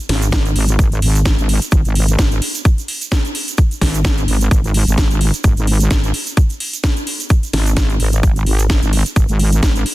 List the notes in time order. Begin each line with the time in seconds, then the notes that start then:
0.09 G#1, snare, open hi-hat
0.22 closed hi-hat, shaker
0.32 kick, snare, closed hi-hat, shaker
0.46 closed hi-hat, shaker
0.56 G#1, open hi-hat
0.68 closed hi-hat, shaker
0.79 kick, closed hi-hat, shaker
0.92 closed hi-hat, shaker
1.02 G#1, open hi-hat
1.15 closed hi-hat, shaker
1.25 kick, snare, closed hi-hat, shaker
1.38 G#1, closed hi-hat, shaker
1.49 open hi-hat
1.62 closed hi-hat, shaker
1.71 G#1, kick, closed hi-hat, shaker
1.85 G#1, closed hi-hat, shaker
1.95 open hi-hat
2.08 closed hi-hat, shaker
2.19 G#1, kick, snare, closed hi-hat, shaker
2.31 closed hi-hat, shaker
2.42 open hi-hat
2.55 closed hi-hat, shaker
2.65 kick, closed hi-hat, shaker
2.78 closed hi-hat, shaker
2.88 open hi-hat
3.01 closed hi-hat, shaker
3.12 kick, snare, closed hi-hat, shaker
3.25 closed hi-hat, shaker
3.35 open hi-hat
3.48 closed hi-hat, shaker
3.57 kick, closed hi-hat, shaker
3.71 closed hi-hat, shaker
3.81 G#1, kick, snare, open hi-hat
3.94 closed hi-hat, shaker
4.04 kick, snare, closed hi-hat, shaker
4.18 closed hi-hat, shaker
4.28 G#1, open hi-hat
4.41 closed hi-hat, shaker
4.51 G#1, kick, closed hi-hat, shaker
4.64 closed hi-hat, shaker
4.74 open hi-hat
4.87 G#1, closed hi-hat, shaker
4.98 kick, snare, closed hi-hat, shaker
5.11 closed hi-hat, shaker
5.21 open hi-hat
5.34 closed hi-hat, shaker
5.44 G#1, kick, closed hi-hat, shaker
5.57 G#1, closed hi-hat, shaker
5.67 open hi-hat
5.80 closed hi-hat, shaker
5.91 G#1, kick, snare, closed hi-hat, shaker
6.04 closed hi-hat, shaker
6.14 open hi-hat
6.27 closed hi-hat, shaker
6.37 kick, closed hi-hat, shaker
6.50 closed hi-hat, shaker
6.60 open hi-hat
6.73 closed hi-hat, shaker
6.84 kick, snare, closed hi-hat, shaker
6.97 closed hi-hat, shaker
7.07 open hi-hat
7.20 closed hi-hat, shaker
7.30 kick, closed hi-hat, shaker
7.43 closed hi-hat, shaker
7.53 G#1, snare, open hi-hat
7.66 closed hi-hat, shaker
7.77 kick, snare, closed hi-hat, shaker
7.90 closed hi-hat, shaker
8.00 G#1, open hi-hat
8.13 closed hi-hat, shaker
8.23 kick, closed hi-hat, shaker
8.36 closed hi-hat, shaker
8.46 G#1, open hi-hat
8.59 closed hi-hat, shaker
8.69 kick, snare, closed hi-hat, shaker
8.82 G#1, closed hi-hat, shaker
8.93 open hi-hat
9.06 closed hi-hat, shaker
9.16 G#1, kick, closed hi-hat, shaker
9.28 G#1, closed hi-hat, shaker
9.39 open hi-hat
9.52 closed hi-hat, shaker
9.63 G#1, kick, snare, closed hi-hat, shaker
9.76 closed hi-hat, shaker
9.86 open hi-hat